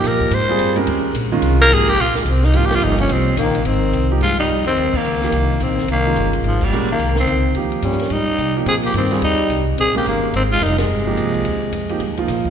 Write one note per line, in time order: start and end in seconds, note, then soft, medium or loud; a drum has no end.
0.00 0.30 A#2 loud
0.00 0.30 F3 medium
0.00 0.30 A#3 medium
0.00 0.30 D#4 medium
0.00 0.31 G4 medium
0.00 hi-hat pedal medium
0.00 ride medium
0.04 0.36 A#4 loud
0.04 snare soft
0.21 kick medium
0.31 0.58 G#2 loud
0.31 0.78 C5 loud
0.31 ride medium
0.49 0.75 G3 medium
0.49 0.75 C4 medium
0.49 0.75 F4 medium
0.49 0.76 G#4 medium
0.59 0.86 G2 medium
0.59 hi-hat pedal medium
0.59 ride medium
0.76 1.13 G#3 medium
0.76 1.13 C#4 medium
0.76 1.13 G4 medium
0.76 1.13 A#4 medium
0.76 ride medium
0.86 1.13 D#2 medium
0.86 ride medium
1.14 1.41 A#1 loud
1.14 hi-hat pedal medium
1.14 ride medium
1.32 1.68 D#3 medium
1.32 1.69 G#3 medium
1.32 1.69 C#4 medium
1.32 1.69 F4 loud
1.41 1.69 C2 loud
1.41 ride medium
1.61 1.75 A#4 loud
1.69 1.96 G#1 loud
1.69 1.86 F3 medium
1.69 1.86 A#3 medium
1.69 1.86 D#4 medium
1.69 1.86 G4 medium
1.69 hi-hat pedal medium
1.69 ride medium
1.74 1.90 G#4 loud
1.87 2.02 G4 loud
1.87 snare soft
1.97 2.25 A#1 loud
1.97 ride medium
2.01 2.17 F4 loud
2.15 2.31 G#3 medium
2.15 snare medium
2.25 2.53 C2 loud
2.25 hi-hat pedal medium
2.25 ride medium
2.29 2.46 C4 medium
2.43 2.58 D#4 loud
2.43 snare soft
2.53 2.81 G#1 loud
2.53 3.31 F3 medium
2.53 3.31 A#3 medium
2.53 3.31 D#4 medium
2.53 2.68 F4 medium
2.53 3.31 G4 medium
2.53 ride medium
2.66 2.77 G4 loud
2.71 snare medium
2.75 2.85 F4 medium
2.81 3.08 G1 loud
2.81 2.99 D#4 medium
2.81 hi-hat pedal medium
2.81 ride medium
2.98 3.14 C#4 loud
2.98 ride medium
3.09 3.36 C2 loud
3.09 3.38 C4 medium
3.09 ride medium
3.37 3.64 A#1 loud
3.37 3.65 D#3 loud
3.37 3.68 A#3 medium
3.37 hi-hat pedal medium
3.37 ride medium
3.55 ride medium
3.65 3.91 G#1 medium
3.65 4.10 D#3 medium
3.65 4.11 C4 medium
3.65 ride medium
3.92 4.20 C2 medium
3.92 hi-hat pedal soft
3.92 ride medium
4.11 4.20 F3 medium
4.11 4.20 A#3 medium
4.11 4.21 D#4 medium
4.11 4.21 G4 medium
4.20 4.48 G2 medium
4.20 4.37 G#3 medium
4.20 4.38 F4 loud
4.20 ride medium
4.39 4.64 G3 medium
4.39 4.65 D#4 medium
4.48 4.75 F2 medium
4.48 hi-hat pedal medium
4.48 ride medium
4.66 4.95 D#3 medium
4.66 4.98 C4 medium
4.66 snare soft
4.66 ride soft
4.76 4.92 D#2 medium
4.76 ride medium
4.93 5.63 D#3 medium
4.93 5.64 A#3 loud
4.93 muted upright bass stroke soft
4.93 kick medium
4.93 crash medium
5.04 5.31 C#2 medium
5.04 hi-hat pedal soft
5.21 5.32 F3 medium
5.21 5.32 A#3 medium
5.21 5.32 D#4 medium
5.21 5.32 G4 medium
5.21 snare soft
5.32 5.59 C2 medium
5.32 ride medium
5.60 5.87 A#1 loud
5.60 5.89 D#3 medium
5.60 5.89 C4 medium
5.60 hi-hat pedal medium
5.60 ride medium
5.78 snare soft
5.87 6.15 C2 medium
5.87 6.31 D#3 medium
5.87 ride medium
5.91 6.32 A#3 loud
6.06 6.42 D#3 medium
6.06 6.42 G#3 medium
6.06 6.42 C#4 medium
6.06 6.43 F4 medium
6.16 6.43 G1 medium
6.16 hi-hat pedal soft
6.16 ride medium
6.33 ride soft
6.43 6.70 G#1 medium
6.43 6.65 G#2 medium
6.43 6.66 F3 medium
6.43 ride medium
6.61 6.90 A#2 medium
6.61 6.91 G3 medium
6.61 kick medium
6.61 crash medium
6.70 6.98 A#1 loud
6.70 6.87 G#3 medium
6.70 6.87 C#4 medium
6.70 6.88 G4 medium
6.70 6.88 A#4 medium
6.70 hi-hat pedal soft
6.88 7.16 D#3 medium
6.88 7.16 A#3 medium
6.88 ride soft
6.98 7.26 C2 medium
6.98 ride medium
7.16 7.55 C4 medium
7.16 snare medium
7.20 7.55 D#3 medium
7.27 7.54 C#2 medium
7.27 hi-hat pedal soft
7.27 ride medium
7.55 7.82 D#2 medium
7.55 7.97 F3 medium
7.55 7.97 A#3 medium
7.55 7.97 D#4 medium
7.55 7.97 G4 medium
7.55 ride medium
7.72 ride soft
7.82 8.10 G2 medium
7.82 8.11 G3 medium
7.82 8.14 C#4 medium
7.82 hi-hat pedal soft
7.82 ride medium
7.92 snare soft
7.99 snare soft
7.99 ride soft
8.10 8.26 G#2 medium
8.10 8.56 G3 medium
8.10 8.56 D#4 loud
8.10 ride medium
8.27 muted upright bass stroke soft
8.38 8.65 C3 medium
8.38 hi-hat pedal medium
8.38 ride medium
8.56 8.92 F3 medium
8.56 8.92 A#3 medium
8.56 8.93 D#4 medium
8.56 8.93 G4 medium
8.66 8.93 A#2 medium
8.66 8.75 C4 medium
8.66 8.76 G#4 loud
8.66 ride medium
8.83 8.93 A#3 medium
8.83 8.95 G4 medium
8.83 ride soft
8.94 9.21 G2 medium
8.94 9.20 D#3 medium
8.94 9.22 C4 medium
8.94 hi-hat pedal medium
8.94 ride medium
9.04 snare soft
9.11 9.21 G3 medium
9.11 9.21 C4 medium
9.11 9.21 F4 medium
9.11 9.21 G#4 medium
9.11 snare soft
9.11 ride soft
9.21 9.49 D#2 medium
9.21 9.64 G3 medium
9.21 9.65 D#4 loud
9.21 ride medium
9.49 9.77 C2 medium
9.49 hi-hat pedal medium
9.49 ride medium
9.77 10.04 A#1 medium
9.77 9.94 C4 medium
9.77 9.95 G#4 loud
9.77 ride medium
9.95 10.31 G#3 medium
9.95 10.05 A#3 medium
9.95 10.31 C#4 medium
9.95 10.32 G4 medium
9.95 10.06 G4 medium
9.95 10.32 A#4 medium
10.05 10.32 G1 medium
10.05 10.33 D#3 medium
10.05 10.33 A#3 medium
10.05 hi-hat pedal medium
10.05 ride medium
10.33 10.60 G#1 medium
10.33 10.43 D#3 medium
10.33 10.43 C4 loud
10.33 ride medium
10.52 10.63 G#3 medium
10.52 10.65 F4 loud
10.61 10.88 F1 medium
10.61 10.79 G3 medium
10.61 10.79 D#4 medium
10.61 snare soft
10.61 hi-hat pedal soft
10.61 ride medium
10.78 12.25 C3 medium
10.78 12.25 G#3 medium
10.78 snare medium
10.78 ride medium
10.89 11.16 G1 medium
11.06 11.43 F3 medium
11.06 11.43 A#3 medium
11.06 11.43 D#4 medium
11.06 11.43 G4 medium
11.17 11.44 C2 loud
11.17 hi-hat pedal medium
11.17 ride medium
11.34 ride soft
11.45 11.71 D#2 medium
11.45 ride medium
11.72 11.99 F2 medium
11.72 hi-hat pedal medium
11.72 ride medium
11.89 11.99 F3 medium
11.89 11.99 A#3 medium
11.89 12.00 D#4 medium
11.89 12.00 G4 medium
11.89 ride soft
11.99 12.09 G2 medium
11.99 ride medium
12.09 12.18 D#2 medium
12.17 12.27 C2 medium
12.17 12.50 F3 medium
12.17 12.50 A#3 medium
12.17 12.50 D#4 medium
12.17 12.50 F4 medium
12.17 ride soft
12.28 12.50 A#2 medium
12.28 snare soft
12.28 hi-hat pedal medium
12.28 ride medium
12.45 kick medium